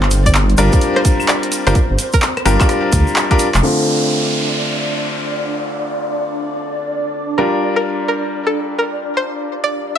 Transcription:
Already playing: G1 C4 C5
0.03 clap
0.11 open hi-hat, shaker
0.26 D5, kick, closed hi-hat, shaker
0.35 clap, shaker
0.50 closed hi-hat
0.58 G1 G3 D4 F4 A#4 D5, open hi-hat, shaker
0.72 kick, closed hi-hat, shaker
0.81 closed hi-hat, shaker
0.96 C5, cross-stick
1.05 kick, open hi-hat, shaker
1.20 claves, shaker
1.28 D5, clap, shaker
1.43 closed hi-hat
1.52 open hi-hat, shaker
1.67 G1 G3 D4 F4 A#4 C5, closed hi-hat, shaker
1.75 kick, closed hi-hat, shaker
1.90 G1
1.99 open hi-hat, shaker
2.13 A#4, kick, closed hi-hat, shaker
2.22 clap, shaker
2.37 cross-stick, closed hi-hat, claves
2.45 G1 G3 D4 F4 G4 A#4, cross-stick, open hi-hat, shaker
2.60 kick, clap, closed hi-hat, claves, shaker
2.69 cross-stick, closed hi-hat, shaker
2.92 D2, kick, open hi-hat, shaker
3.07 shaker
3.16 clap, shaker
3.31 G3 D4 F4 A#4, kick, closed hi-hat
3.39 open hi-hat, shaker
3.54 F1, clap, closed hi-hat, shaker
3.63 D3 A3 C4 D4 F4 D5, downlifter
7.38 G3 D4 F4 A#4
7.76 A#4
8.08 A#4
8.47 A4
8.79 A#4
9.17 C5
9.64 D5

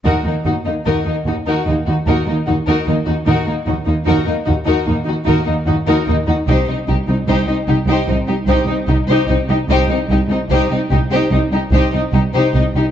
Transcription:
0.04 D#2 D#4 F#4 A#4
0.25 D#2 A#3 D#4
0.45 D#2 D#4 F#4
0.65 D#2 A#3 D#4
0.85 D#2 D#4 F#4 A#4
1.05 D#2 A#3 D#4
1.26 D#2 D#4 F#4
1.46 D#2 D#4 F#4 A#4
1.66 D#2 A#3 D#4
1.86 D#2 D#4 F#4
2.07 D#2 D#4 F#4 A#4
2.26 D#2 A#3 D#4
2.47 D#2 D#4 F#4
2.67 D#2 D#4 F#4 A#4
2.87 D#2 A#3 D#4
3.07 D#2 D#4 F#4
3.25 D#2 D#4 F#4 A#4
3.46 D#2 A#3 D#4
3.66 D#2 D#4 F#4
3.85 D#2 A#3 D#4
4.04 D#2 D#4 F#4 A#4
4.25 D#2 A#3 D#4
4.45 D#2 D#4 F#4
4.64 D#2 D#4 F#4 A#4
4.85 D#2 A#3 D#4
5.05 D#2 D#4 F#4
5.25 D#2 D#4 F#4 A#4
5.45 D#2 A#3 D#4
5.67 D#2 D#4 F#4
5.87 D#2 D#4 F#4 A#4
6.06 D#2 A#3 D#4
6.27 D#2 D#4 F#4
6.47 C2 D#4 G4 C5
6.67 C2 C4 D#4
6.87 C2 D#4 G4
7.07 C2 C4 D#4
7.27 C2 D#4 G4 C5
7.47 C2 C4 D#4
7.68 C2 D#4 G4
7.88 C2 D#4 G4 C5
8.08 C2 C4 D#4
8.27 C2 D#4 G4
8.46 C2 D#4 G4 C5
8.67 C2 C4 D#4
8.87 C2 D#4 G4
9.07 C2 D#4 G4 C5
9.27 C2 C4 D#4
9.48 C2 D#4 G4
9.69 C2 D#4 G4 C5
9.88 C2 C4 D#4
10.09 C2 D#4 G4
10.29 C2 C4 D#4
10.49 C2 D#4 G4 C5
10.70 C2 C4 D#4
10.90 C2 D#4 G4
11.11 C2 D#4 G4 C5
11.30 C2 C4 D#4
11.52 C2 D#4 G4
11.72 C2 D#4 G4 C5
11.93 C2 C4 D#4
12.12 C2 D#4 G4
12.33 C2 D#4 G4 C5
12.54 C2 C4 D#4
12.75 C2 D#4 G4

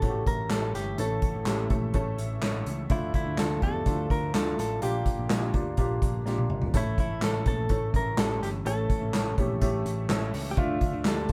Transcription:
Already playing: A2 C#3 E3 A3 C#4 E4 G4 A4 E5
0.02 A1 A3 C#4 E4 F#4, kick, closed hi-hat
0.09 G4
0.26 A1 A#4, kick, closed hi-hat
0.50 A1 A3 C#4 E4 G4 A4, snare, clap, closed hi-hat
0.75 G1 G4, snare, closed hi-hat
0.98 A1 A2 A3 C#4 E4 A4, closed hi-hat
1.22 kick, closed hi-hat
1.35 A1
1.45 A1 A3 C#4 E4 G4, snare, clap, closed hi-hat
1.70 A#1 A3 C#4 E4 A4, kick, closed hi-hat
1.94 A1 A3 C#4 E4 A4, kick, closed hi-hat
2.18 A1, closed hi-hat
2.42 A1 A3 C#4 E4 A4, snare, clap, closed hi-hat
2.66 C#2, closed hi-hat
2.90 D2 D3 F3 A3 D4 E4 F4, kick, closed hi-hat
3.14 E4, kick, closed hi-hat
3.26 D2
3.37 D2 A3 D4 E4 F4 A4, snare, clap, closed hi-hat
3.62 E2 A3 D4 E4 G4 A4, kick, closed hi-hat
3.86 D2 A3 D4 E4 F4, kick, closed hi-hat
4.10 D2 A#4, kick, closed hi-hat
4.34 D2 A3 D4 E4 F4 A4, snare, clap, closed hi-hat
4.58 A1 A4, snare, closed hi-hat
4.82 A#1 A#2 G3 A#3 D4 F4 G4, closed hi-hat
5.06 kick, closed hi-hat
5.18 A#1
5.29 A#1 A#3 D4 F4 G4, snare, clap, closed hi-hat
5.54 D2 A#3 D4 F4 G4, kick, closed hi-hat
5.77 A#1 A#3 D4 F4 G4, kick, closed hi-hat
6.02 A#1, kick, closed hi-hat
6.26 A#1 A#3 D4 F4 G4, snare
6.38 high tom
6.50 G1, mid tom
6.62 floor tom
6.74 A1 A2 C#3 E3 A3 C#4 E4 A4 E5, kick, closed hi-hat
6.98 E4, kick, closed hi-hat
7.10 A1
7.22 A1 A3 C#4 E4 A4, snare, clap, closed hi-hat
7.46 A#1 A3 C#4 E4 A4, kick, closed hi-hat
7.69 A1 A3 C#4 E4 A4, kick, closed hi-hat
7.94 A1 A#4, kick, closed hi-hat
8.17 A1 A3 C#4 E4 G4 A4, snare, clap, closed hi-hat
8.41 G1 G4, snare, closed hi-hat
8.65 A1 A2 G3 A3 C#4 E4 A4, closed hi-hat
8.90 kick, closed hi-hat
9.02 A1
9.14 A1 A3 C#4 E4 A4, snare, clap, closed hi-hat
9.38 A#1 A3 C#4 E4 G4, kick, closed hi-hat
9.61 A1 A3 C#4 E4 G4, kick, closed hi-hat
9.86 A1, closed hi-hat
10.09 A1 A3 C#4 E4 A4, snare, clap, closed hi-hat
10.33 C#2, snare, open hi-hat
10.51 G4
10.57 D2 D3 F3 A3 D4 F4 E5, kick, closed hi-hat
10.81 kick, closed hi-hat
10.93 D2
11.05 D2 A3 D4 E4 G4 A4, snare, clap, closed hi-hat
11.29 A3, closed hi-hat

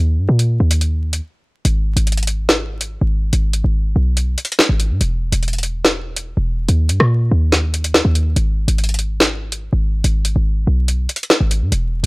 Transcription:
Already playing: D#2
0.18 G2
0.29 A#2
0.39 closed hi-hat
0.60 D#2
0.71 closed hi-hat
0.81 closed hi-hat
1.13 closed hi-hat
1.65 G#1, closed hi-hat
1.96 G#1, closed hi-hat
2.07 closed hi-hat
2.12 closed hi-hat
2.17 closed hi-hat
2.23 closed hi-hat
2.27 closed hi-hat
2.49 snare, closed hi-hat
2.81 closed hi-hat
3.01 G#1
3.33 G#1, closed hi-hat
3.53 closed hi-hat
3.64 G#1
3.96 B1
4.17 closed hi-hat
4.38 closed hi-hat
4.45 closed hi-hat
4.52 closed hi-hat
4.59 snare
4.69 G#1
4.80 closed hi-hat
4.90 G#2
5.01 E1, closed hi-hat
5.32 E1, closed hi-hat
5.43 closed hi-hat
5.48 closed hi-hat
5.53 closed hi-hat
5.58 closed hi-hat
5.63 closed hi-hat
5.85 snare, closed hi-hat
6.16 closed hi-hat
6.37 E1
6.68 D#2, closed hi-hat
6.89 G2, closed hi-hat
7.00 A#2, cross-stick
7.31 D#2
7.52 snare, closed hi-hat
7.74 closed hi-hat
7.84 closed hi-hat
7.94 snare
8.05 D#2
8.15 closed hi-hat
8.36 G#1, closed hi-hat
8.68 G#1, closed hi-hat
8.78 closed hi-hat
8.84 closed hi-hat
8.89 closed hi-hat
8.94 closed hi-hat
8.99 closed hi-hat
9.20 snare, closed hi-hat
9.52 closed hi-hat
9.73 G#1
10.04 G#1, closed hi-hat
10.25 closed hi-hat
10.36 G#1
10.67 B1
10.88 closed hi-hat
11.09 closed hi-hat
11.16 closed hi-hat
11.23 closed hi-hat
11.30 snare
11.41 G#1
11.51 closed hi-hat
11.62 G#2
11.72 E1, closed hi-hat

